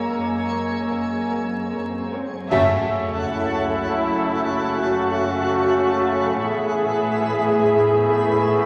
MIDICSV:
0, 0, Header, 1, 14, 480
1, 0, Start_track
1, 0, Tempo, 794702
1, 1514, Time_signature, 5, 2, 24, 8
1, 1988, Tempo, 774194
1, 5314, End_track
2, 0, Start_track
2, 0, Title_t, "Violin section"
2, 0, Program_c, 0, 48
2, 0, Note_on_c, 0, 88, 44
2, 0, Note_on_c, 0, 92, 50
2, 1250, Note_off_c, 0, 92, 0
2, 1253, Note_off_c, 0, 88, 0
2, 5314, End_track
3, 0, Start_track
3, 0, Title_t, "Celesta"
3, 0, Program_c, 1, 8
3, 0, Control_c, 1, 64, 127
3, 1525, Control_c, 1, 64, 0
3, 1633, Control_c, 1, 64, 127
3, 1752, Note_on_c, 1, 88, 56
3, 3164, Note_off_c, 1, 88, 0
3, 3923, Control_c, 1, 64, 0
3, 4033, Control_c, 1, 64, 127
3, 5314, End_track
4, 0, Start_track
4, 0, Title_t, "Violin section"
4, 0, Program_c, 2, 48
4, 0, Note_on_c, 2, 82, 66
4, 1246, Note_off_c, 2, 82, 0
4, 1512, Note_on_c, 2, 81, 94
4, 3886, Note_off_c, 2, 81, 0
4, 3918, Note_on_c, 2, 83, 82
4, 5314, Note_off_c, 2, 83, 0
4, 5314, End_track
5, 0, Start_track
5, 0, Title_t, "Synth texture"
5, 0, Program_c, 3, 99
5, 0, Note_on_c, 3, 68, 58
5, 0, Note_on_c, 3, 73, 57
5, 0, Note_on_c, 3, 80, 60
5, 1488, Note_off_c, 3, 68, 0
5, 1489, Note_off_c, 3, 80, 0
5, 1510, Note_off_c, 3, 73, 0
5, 1516, Note_on_c, 3, 78, 91
5, 1517, Note_on_c, 3, 69, 93
5, 1517, Note_on_c, 3, 73, 105
5, 3888, Note_off_c, 3, 78, 0
5, 3889, Note_off_c, 3, 69, 0
5, 3889, Note_off_c, 3, 73, 0
5, 3915, Note_on_c, 3, 71, 75
5, 3917, Note_on_c, 3, 76, 73
5, 3917, Note_on_c, 3, 83, 72
5, 5314, Note_off_c, 3, 71, 0
5, 5314, Note_off_c, 3, 76, 0
5, 5314, Note_off_c, 3, 83, 0
5, 5314, End_track
6, 0, Start_track
6, 0, Title_t, "Violin section"
6, 0, Program_c, 4, 48
6, 68, Note_on_c, 4, 70, 39
6, 68, Note_on_c, 4, 73, 35
6, 116, Note_off_c, 4, 70, 0
6, 116, Note_off_c, 4, 73, 0
6, 306, Note_on_c, 4, 70, 35
6, 306, Note_on_c, 4, 73, 33
6, 354, Note_off_c, 4, 70, 0
6, 354, Note_off_c, 4, 73, 0
6, 545, Note_on_c, 4, 70, 39
6, 545, Note_on_c, 4, 73, 38
6, 593, Note_off_c, 4, 70, 0
6, 593, Note_off_c, 4, 73, 0
6, 787, Note_on_c, 4, 70, 36
6, 787, Note_on_c, 4, 73, 34
6, 836, Note_off_c, 4, 70, 0
6, 836, Note_off_c, 4, 73, 0
6, 1032, Note_on_c, 4, 70, 37
6, 1032, Note_on_c, 4, 73, 36
6, 1080, Note_off_c, 4, 73, 0
6, 1081, Note_off_c, 4, 70, 0
6, 1280, Note_on_c, 4, 70, 36
6, 1280, Note_on_c, 4, 73, 38
6, 1328, Note_off_c, 4, 70, 0
6, 1328, Note_off_c, 4, 73, 0
6, 1519, Note_on_c, 4, 76, 88
6, 3890, Note_off_c, 4, 76, 0
6, 3924, Note_on_c, 4, 76, 78
6, 5314, Note_off_c, 4, 76, 0
6, 5314, End_track
7, 0, Start_track
7, 0, Title_t, "Viola section"
7, 0, Program_c, 5, 48
7, 73, Note_on_c, 5, 56, 38
7, 73, Note_on_c, 5, 68, 38
7, 121, Note_off_c, 5, 56, 0
7, 122, Note_off_c, 5, 68, 0
7, 311, Note_on_c, 5, 56, 38
7, 312, Note_on_c, 5, 68, 40
7, 359, Note_off_c, 5, 56, 0
7, 360, Note_off_c, 5, 68, 0
7, 551, Note_on_c, 5, 56, 38
7, 553, Note_on_c, 5, 68, 39
7, 600, Note_off_c, 5, 56, 0
7, 601, Note_off_c, 5, 68, 0
7, 789, Note_on_c, 5, 56, 37
7, 789, Note_on_c, 5, 68, 39
7, 837, Note_off_c, 5, 56, 0
7, 837, Note_off_c, 5, 68, 0
7, 1035, Note_on_c, 5, 56, 41
7, 1035, Note_on_c, 5, 68, 42
7, 1083, Note_off_c, 5, 56, 0
7, 1083, Note_off_c, 5, 68, 0
7, 1278, Note_on_c, 5, 68, 39
7, 1279, Note_on_c, 5, 56, 38
7, 1327, Note_off_c, 5, 56, 0
7, 1327, Note_off_c, 5, 68, 0
7, 1990, Note_on_c, 5, 64, 109
7, 2925, Note_off_c, 5, 64, 0
7, 2954, Note_on_c, 5, 66, 104
7, 3915, Note_off_c, 5, 66, 0
7, 3920, Note_on_c, 5, 68, 120
7, 5314, Note_off_c, 5, 68, 0
7, 5314, End_track
8, 0, Start_track
8, 0, Title_t, "French horn section"
8, 0, Program_c, 6, 60
8, 0, Note_on_c, 6, 58, 53
8, 1249, Note_off_c, 6, 58, 0
8, 1517, Note_on_c, 6, 61, 82
8, 1518, Note_on_c, 6, 66, 85
8, 3888, Note_off_c, 6, 61, 0
8, 3889, Note_off_c, 6, 66, 0
8, 3913, Note_on_c, 6, 59, 83
8, 3913, Note_on_c, 6, 64, 85
8, 5314, Note_off_c, 6, 59, 0
8, 5314, Note_off_c, 6, 64, 0
8, 5314, End_track
9, 0, Start_track
9, 0, Title_t, "Trombone section"
9, 0, Program_c, 7, 61
9, 0, Note_on_c, 7, 49, 51
9, 0, Note_on_c, 7, 56, 50
9, 1295, Note_off_c, 7, 49, 0
9, 1295, Note_off_c, 7, 56, 0
9, 1515, Note_on_c, 7, 57, 85
9, 1516, Note_on_c, 7, 49, 86
9, 3887, Note_off_c, 7, 57, 0
9, 3888, Note_off_c, 7, 49, 0
9, 3914, Note_on_c, 7, 57, 88
9, 3917, Note_on_c, 7, 52, 89
9, 5314, Note_off_c, 7, 52, 0
9, 5314, Note_off_c, 7, 57, 0
9, 5314, End_track
10, 0, Start_track
10, 0, Title_t, "Cello section"
10, 0, Program_c, 8, 48
10, 0, Note_on_c, 8, 58, 55
10, 1274, Note_off_c, 8, 58, 0
10, 1516, Note_on_c, 8, 42, 96
10, 3888, Note_off_c, 8, 42, 0
10, 3915, Note_on_c, 8, 45, 91
10, 5314, Note_off_c, 8, 45, 0
10, 5314, End_track
11, 0, Start_track
11, 0, Title_t, "Double bass section"
11, 0, Program_c, 10, 48
11, 68, Note_on_c, 10, 42, 48
11, 492, Note_off_c, 10, 42, 0
11, 549, Note_on_c, 10, 42, 48
11, 975, Note_off_c, 10, 42, 0
11, 1032, Note_on_c, 10, 42, 48
11, 1457, Note_off_c, 10, 42, 0
11, 1517, Note_on_c, 10, 30, 77
11, 3889, Note_off_c, 10, 30, 0
11, 3912, Note_on_c, 10, 33, 74
11, 5314, Note_off_c, 10, 33, 0
11, 5314, End_track
12, 0, Start_track
12, 0, Title_t, "Sub drop"
12, 0, Program_c, 11, 103
12, 1516, Note_on_c, 11, 60, 67
12, 3913, Note_off_c, 11, 60, 0
12, 5314, End_track
13, 0, Start_track
13, 0, Title_t, "Swell"
13, 0, Program_c, 12, 103
13, 0, Note_on_c, 12, 60, 44
13, 1514, Note_off_c, 12, 60, 0
13, 5314, End_track
14, 0, Start_track
14, 0, Title_t, "Drums"
14, 1517, Note_on_c, 9, 35, 78
14, 1517, Note_on_c, 9, 49, 75
14, 1577, Note_off_c, 9, 35, 0
14, 1577, Note_off_c, 9, 49, 0
14, 5314, End_track
0, 0, End_of_file